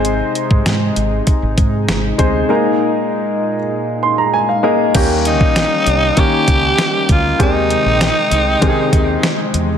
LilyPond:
<<
  \new Staff \with { instrumentName = "Tenor saxophone" } { \time 4/4 \key aes \major \tempo 4 = 98 r1 | r1 | r8 ees'4. g'4. f'8 | ees'2.~ ees'8 r8 | }
  \new Staff \with { instrumentName = "Grand piano" } { \time 4/4 \key aes \major <aes c' ees' c''>4~ <aes c' ees' c''>16 r2 r16 <aes c' ees' c''>8 | <aes bes ees' bes'>4.~ <aes bes ees' bes'>16 r8. c'''16 bes''16 aes''16 f''16 <aes bes ees' bes' ees''>8 | <ees bes des' g'>4.~ <ees bes des' g'>16 r16 <ees bes des' bes'>4.~ <ees bes des' bes'>16 r16 | <ees aes c' g'>4.~ <ees aes c' g'>16 r16 <ees aes c' g' aes'>4.~ <ees aes c' g' aes'>16 r16 | }
  \new Staff \with { instrumentName = "Analog synth pad" } { \clef bass \time 4/4 \key aes \major << { <aes ees'>1~ | <aes ees'>1 | <g ees'>1 | <aes g''>1 | } \\ { c1 | bes,1 | des'1 | c1 | } >> }
  \new Staff \with { instrumentName = "Fretless electric bass" } { \clef bass \time 4/4 \key aes \major aes,,8 r16 aes,16 aes,8 aes,,8 r16 aes,,16 aes,8 aes,,8 d,8 | r1 | ees,8. bes,,8 r16 c,8 r8 des,8 r8 d,8 | ees,8. bes,,8 r16 c,8 r8 ees,8 r8 fes,8 | }
  \new DrumStaff \with { instrumentName = "Drums" } \drummode { \time 4/4 hh8 hh16 bd16 <hh sn>8 hh8 <hh bd>8 <hh bd>8 <hh sn>8 <hh bd>8 | r4 r4 r4 r4 | <cymc hh bd>8 hh16 bd16 <hh sn>8 hh8 <hh bd>8 <hh bd>8 <hh sn>8 <hh bd>8 | <hh bd>8 hh8 <hh sn>8 hh8 <hh bd>8 <hh bd>8 <hh sn>8 hh8 | }
>>